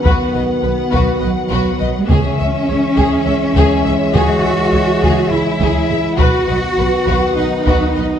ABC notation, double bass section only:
X:1
M:7/8
L:1/8
Q:1/4=103
K:C#m
V:1 name="Double bass section" clef=bass
B,,, B,,, B,,, B,,, B,,, B,,, B,,, | C,, C,, C,, C,, C,, C,, C,, | C,, C,, C,, C,, C,, C,, C,, | B,,, B,,, B,,, B,,, B,,, B,,, B,,, |]